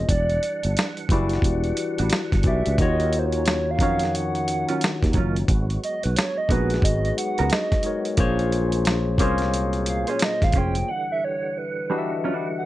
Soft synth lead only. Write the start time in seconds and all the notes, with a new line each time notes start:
0.09 D5
2.47 E5
2.80 D#5
3.19 C5
3.26 C#5
3.71 F5
4.16 F#5
5.84 D#5
6.04 B4
6.17 C#5
6.37 D#5
6.52 B4
6.84 D#5
7.05 D#5
7.17 F#5
7.52 D#5
9.88 F5
10.10 C#5
10.24 D#5
10.44 F5
10.58 G5
10.91 F#5
11.12 E5
11.24 C#5
11.58 B4
12.58 F#5